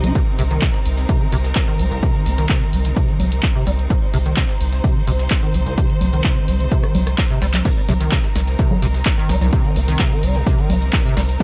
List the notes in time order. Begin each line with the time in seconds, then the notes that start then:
Already playing: C2 C3 C4 D#4 D#5
0.04 D#4, closed hi-hat, low conga
0.15 C3 A#4, kick, closed hi-hat
0.39 C2 C3, closed hi-hat, open hi-hat
0.51 D#3, closed hi-hat
0.62 C3, kick, snare, clap, closed hi-hat
0.74 snare
0.85 C2, closed hi-hat, open hi-hat
0.97 snare, closed hi-hat
1.09 C3, kick, closed hi-hat
1.21 D#3
1.32 C2 C3, closed hi-hat, open hi-hat
1.44 snare, closed hi-hat
1.55 kick, snare, clap, closed hi-hat
1.68 D#3
1.79 C2 G3, closed hi-hat, open hi-hat
1.91 C2, closed hi-hat
2.03 C3, kick, closed hi-hat
2.15 D#3, closed hi-hat
2.26 C2 C4, closed hi-hat, open hi-hat
2.38 D#3, closed hi-hat
2.49 C3, kick, snare, clap, closed hi-hat
2.62 D#3
2.73 C2 G3, closed hi-hat, open hi-hat
2.85 C3, snare, closed hi-hat
2.96 C3, kick, closed hi-hat
3.08 D#3, closed hi-hat
3.20 C2 C4, closed hi-hat, open hi-hat, low conga
3.32 closed hi-hat
3.43 kick, snare, clap, closed hi-hat
3.55 C3
3.67 C2 G3, closed hi-hat, open hi-hat
3.79 closed hi-hat
3.90 C3 C5, kick, closed hi-hat
4.14 C2 C3, closed hi-hat, open hi-hat
4.26 D#3, closed hi-hat
4.37 C3, kick, snare, clap, closed hi-hat
4.49 snare
4.61 C2, closed hi-hat, open hi-hat
4.73 snare, closed hi-hat
4.84 C3, kick, closed hi-hat
4.96 D#3
5.07 C2 C3, closed hi-hat, open hi-hat
5.19 snare, closed hi-hat
5.30 kick, snare, clap, closed hi-hat
5.43 D#3
5.54 C2 G3, closed hi-hat, open hi-hat
5.66 C2, closed hi-hat
5.78 C3, kick, closed hi-hat
5.90 D#3, closed hi-hat
6.01 C2 C4, closed hi-hat, open hi-hat, low conga
6.13 D#3, closed hi-hat
6.24 C3, kick, snare, clap, closed hi-hat
6.36 D#3
6.48 C2 G3, closed hi-hat, open hi-hat
6.60 C3, closed hi-hat
6.71 C3, kick, closed hi-hat
6.83 D#3, cross-stick, closed hi-hat
6.95 C2 C4, closed hi-hat, open hi-hat, low conga
7.07 cross-stick, closed hi-hat
7.18 kick, snare, clap, closed hi-hat
7.30 C3, snare
7.42 C2 G3, snare, closed hi-hat, open hi-hat
7.54 snare, clap, closed hi-hat, low conga
7.65 C3 C4 D#4 A#4, kick, closed hi-hat, crash, shaker
7.77 shaker
7.89 C2 C3, closed hi-hat, open hi-hat, low conga
8.01 D#3, closed hi-hat, shaker
8.12 C3, kick, snare, clap, closed hi-hat, shaker
8.23 snare, shaker
8.35 C2, snare, closed hi-hat, open hi-hat
8.47 snare, closed hi-hat, shaker
8.58 C3, kick, closed hi-hat, shaker
8.71 D#3, low conga, shaker
8.82 C2 C3, closed hi-hat, open hi-hat
8.94 snare, closed hi-hat, shaker
9.05 kick, snare, clap, closed hi-hat, shaker
9.17 D#3, shaker
9.29 C2 G3, snare, closed hi-hat, open hi-hat
9.41 C2, closed hi-hat, low conga, shaker
9.53 C3, kick, closed hi-hat, shaker
9.65 D#3, closed hi-hat, shaker
9.76 C2 C4, closed hi-hat, open hi-hat
9.88 D#3, closed hi-hat, shaker
9.99 C3, kick, snare, clap, closed hi-hat, shaker
10.12 D#3, shaker
10.23 C2 G3, closed hi-hat, open hi-hat
10.34 C3, snare, closed hi-hat, shaker
10.46 C3, kick, closed hi-hat, shaker
10.58 D#3, closed hi-hat, shaker
10.70 C2 C4, closed hi-hat, open hi-hat, low conga
10.82 closed hi-hat, shaker
10.93 kick, snare, clap, closed hi-hat, shaker
11.05 C3, shaker
11.17 C2 G3, snare, closed hi-hat, open hi-hat
11.28 closed hi-hat, shaker
11.40 C3, kick, closed hi-hat, shaker